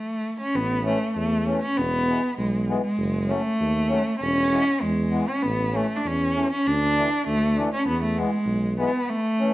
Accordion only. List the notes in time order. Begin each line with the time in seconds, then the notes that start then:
0.83 E3 A3 C#4
1.46 E3 A3 C#4
2.08 E3 G#3 B3
2.68 E3 G#3 B3
3.28 F#3 A3 C#4
3.88 F#3 A3 C#4
4.51 E3 G#3 B3
5.11 E3 G#3 B3
5.73 E3 A3 C#4
6.34 E3 A3 C#4
6.97 E3 A3 D4
7.56 E3 A3 D4
8.17 E3 G#3 B3
8.78 E3 G#3 B3
9.39 E3 A3 C#4